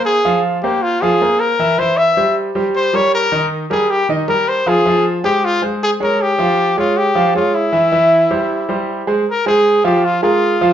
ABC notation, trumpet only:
X:1
M:4/4
L:1/8
Q:1/4=156
K:Fm
V:1 name="Trumpet"
A2 z G F A2 B- | B c =e2 z2 c d | B2 z A G z B c | A2 z G F z A B |
G3 F G2 F =E- | =E6- E z | B A2 G F F3 |]